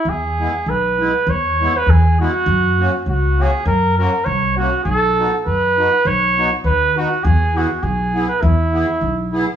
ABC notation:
X:1
M:2/4
L:1/16
Q:"Swing" 1/4=100
K:E
V:1 name="Trumpet"
G4 B4 | c3 B G2 F2- | F4 F2 G2 | ^A2 A2 c2 F2 |
A4 B4 | c3 z B2 F2 | G2 F2 G3 B | E6 z2 |]
V:2 name="Accordion"
z2 [G,B,E]2 z2 [G,B,E]2 | z2 [G,B,E]2 z2 [G,B,E]2 | z2 [^A,CF]2 z2 [A,CF]2 | z2 [^A,CF]2 z2 [A,CF]2 |
z2 [B,DF]2 z2 [B,DF]2 | z2 [B,DF]2 z2 [B,DF]2 | z2 [B,EG]2 z2 [B,EG]2 | z2 [B,EG]2 z2 [B,EG]2 |]
V:3 name="Upright bass" clef=bass
E,,4 B,,,4 | E,,4 E,,4 | F,,4 C,,4 | F,,4 =C,,4 |
B,,,4 F,,4 | B,,,4 D,,4 | E,,4 B,,,4 | E,,4 B,,,4 |]